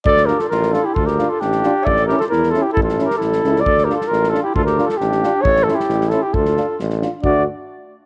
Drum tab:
SD |-oooooo-|-oo-ooo-|-oooooo-|-ooooooo|
BD |o-------|o-------|o-------|o-------|

SD |-oooooo-|-oooooo-|-oooooo-|-oo-ooo-|
BD |o-------|o-------|o-------|o-------|

SD |--------|
BD |o-------|